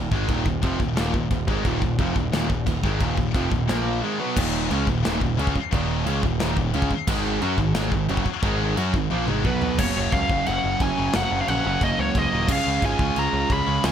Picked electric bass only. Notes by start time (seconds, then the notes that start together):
Already playing: D#1
0.12 G#1
0.29 D#1
0.46 D#1
0.63 F1
0.80 D#1
0.98 D#1
1.14 D#1
1.31 D#1
1.49 G#1
1.65 D#1
1.82 D#1
1.99 F1
2.16 D#1
2.32 D#1
2.50 D#1
2.67 D#1
2.84 G#1
3.01 D#1
3.18 D#1
3.34 F1
3.52 D#1
3.69 A#1
4.37 D#1
4.71 C#2
4.88 D#1
5.05 D#1
5.22 D#1
5.38 C#2
5.56 muted picked electric bass stroke
5.73 D#1
6.06 C#2
6.24 D#1
6.41 D#1
6.57 D#1
6.75 C#2
6.91 muted picked electric bass stroke
7.08 G#1
7.42 F#2
7.58 G#1
7.76 G#1
7.92 G#1
8.09 F#1
8.43 G#1
8.77 F#2
8.94 G#1
9.11 A#1
9.29 G#1
9.45 B1
9.79 F#1
9.97 F#1
10.13 C#2
10.30 F#1
10.48 F#1
10.64 F#1
10.80 F#1
10.98 F#1
11.14 F#1
11.31 F#1
11.49 A#1
11.65 F#1
11.81 F#1
11.99 C#2
12.15 C#2
12.33 D#1
12.49 C#2
12.67 C#2
12.82 G#1
12.99 C#2
13.17 C#2
13.33 C#2
13.50 C#2
13.67 C#2
13.84 C#2